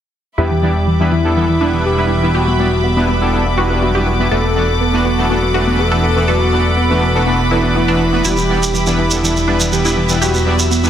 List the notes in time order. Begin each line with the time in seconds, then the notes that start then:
0.38 E1 G3 B3 D4 E4 G4 B4 E5 B5 D6
0.51 E3
0.62 E3 G3 B3 D4 E4 D5
0.87 E3
1.00 E3 G3 B3 D4 E4 B4
1.12 E3 E4
1.24 G3 B3 D4 E4 A4
1.36 E3 G3 B3 D4 E4 A4
1.49 E3
1.61 G3 B3 D4 E4 B4
1.74 E3
1.85 E3 G4
1.98 G3 B3 D4 E4 B4
2.10 E3
2.23 E3 G3 B3 D4 E4 B4
2.35 G3 B3 D4 E4 F#4 G4 B4
2.47 B3
2.59 G3 B3 D4 E4 D5
2.84 B3
2.97 G3 B3 D4 E4 B4
3.08 B3
3.21 G3 B3 D4 E4 A4
3.33 G3 B3 D4 E4 A4
3.46 B3
3.57 G3 B3 D4 E4 F#4 B4
3.70 B3
3.82 B3 F#4
3.95 G3 B3 D4 E4 G4 B4
4.07 B3
4.20 G3 B3 D4 E4 B4
4.31 E1 E3 A3 B3 D4 F#4 A4 B4 F#5 B5
4.44 B3
4.56 E3 A3 B3 D4 F#4 D5
4.81 B3
4.93 E3 A3 B3 D4 F#4 B4
5.05 B3 F#4
5.18 E3 A3 B3 D4 F#4 A4
5.30 E3 A3 B3 D4 F#4 A4
5.42 B3
5.54 E3 A3 B3 D4 F#4 B4
5.67 B3
5.79 B3 A4
5.92 E3 A3 B3 D4 F#4 A4 B4
6.03 B3
6.16 E3 A3 B3 D4 F#4 B4
6.28 E3 A3 B3 D4 F#4 A4 B4
6.41 B3
6.52 E3 A3 B3 D4 F#4 D5
6.77 B3
6.90 E3 A3 B3 D4 F#4 B4
7.02 B3
7.15 E3 A3 B3 D4 F#4 A4
7.26 E3 A3 B3 D4 F#4 A4
7.39 B3
7.51 E3 A3 B3 D4 E4 F#4 B4
7.64 B3
7.76 B3 E4
7.88 E3 A3 B3 D4 F#4 B4
8.00 B3
8.13 A3 B3 D4 F#4 B4
8.25 E1 G3 B3 D4 E4 G4 B4 E5, shekere
8.37 E3, shekere
8.49 E3 G3 B3 D4 E4 D5
8.63 shekere
8.74 E3, shekere
8.86 E3 G3 B3 D4 E4 B4, shekere
8.99 E3 E4
9.11 G3 B3 D4 E4 A4, shekere
9.23 E3 G3 B3 D4 E4 A4, shekere
9.36 E3, shekere
9.48 G3 B3 D4 E4 B4
9.60 E3, shekere
9.72 E3 G4, shekere
9.85 G3 B3 D4 E4 B4, shekere
9.97 E3
10.09 E3 G3 B3 D4 E4 B4, shekere
10.21 G3 B3 D4 E4 F#4 G4 B4 E6, shekere
10.34 B3, shekere
10.46 G3 B3 D4 E4 D5
10.59 shekere
10.71 B3, shekere
10.83 G3 B3 D4 E4 B4, shekere